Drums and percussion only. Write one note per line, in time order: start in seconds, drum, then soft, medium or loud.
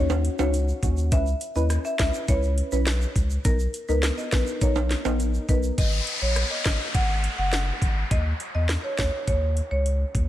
0.10 high timbale medium
0.10 shaker medium
0.25 closed hi-hat medium
0.39 high timbale medium
0.39 shaker medium
0.54 closed hi-hat medium
0.54 shaker medium
0.68 shaker soft
0.83 kick medium
0.83 closed hi-hat medium
0.83 shaker medium
0.97 shaker medium
1.12 kick loud
1.12 closed hi-hat medium
1.12 shaker medium
1.26 shaker medium
1.41 closed hi-hat medium
1.41 shaker medium
1.56 shaker medium
1.70 cross-stick medium
1.70 closed hi-hat medium
1.70 shaker medium
1.85 shaker medium
1.99 kick loud
1.99 snare loud
1.99 closed hi-hat medium
2.14 shaker medium
2.28 kick loud
2.28 closed hi-hat medium
2.28 shaker medium
2.43 shaker medium
2.58 closed hi-hat medium
2.72 shaker medium
2.87 snare loud
2.87 closed hi-hat medium
2.87 shaker medium
3.01 shaker medium
3.16 kick medium
3.16 closed hi-hat medium
3.16 shaker medium
3.30 shaker medium
3.45 kick loud
3.45 closed hi-hat medium
3.45 shaker medium
3.59 shaker medium
3.74 closed hi-hat medium
3.74 shaker medium
3.89 shaker medium
4.03 snare loud
4.03 closed hi-hat medium
4.03 shaker medium
4.18 shaker medium
4.32 kick loud
4.32 snare loud
4.32 closed hi-hat medium
4.47 shaker medium
4.61 kick loud
4.61 closed hi-hat medium
4.61 shaker medium
4.76 high timbale medium
4.76 shaker medium
4.91 snare medium
4.91 closed hi-hat medium
5.05 high timbale medium
5.05 shaker medium
5.20 closed hi-hat medium
5.20 shaker medium
5.34 shaker soft
5.49 kick medium
5.49 closed hi-hat medium
5.49 shaker medium
5.63 shaker medium
5.78 kick loud
5.78 closed hi-hat medium
6.07 closed hi-hat medium
6.36 cross-stick medium
6.36 closed hi-hat medium
6.65 kick loud
6.65 snare loud
6.65 closed hi-hat medium
6.95 kick loud
6.95 closed hi-hat medium
7.24 closed hi-hat medium
7.53 snare loud
7.53 closed hi-hat medium
7.82 kick medium
7.82 closed hi-hat medium
8.11 kick loud
8.11 closed hi-hat medium
8.40 closed hi-hat medium
8.69 cross-stick medium
8.69 snare loud
8.69 closed hi-hat medium
8.98 kick loud
8.98 snare loud
8.98 closed hi-hat medium
9.27 kick loud
9.27 closed hi-hat medium
9.57 closed hi-hat medium
9.86 closed hi-hat medium
10.15 kick medium
10.15 closed hi-hat medium